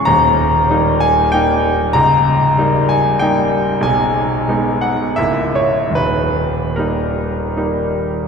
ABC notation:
X:1
M:3/4
L:1/8
Q:1/4=93
K:D#phr
V:1 name="Grand piano"
a3 g =g2 | a3 g =g2 | g3 f e c | B2 A3 z |]
V:2 name="Grand piano" clef=bass
[D,,,D,,]2 [=G,A,D]2 [G,A,D]2 | [C,,,C,,]2 [=G,A,D]2 [G,A,D]2 | [B,,,,B,,,]2 [G,B,D]2 [C,,,C,,A,E]2 | [D,,,D,,]2 [=G,A,D]2 [G,A,D]2 |]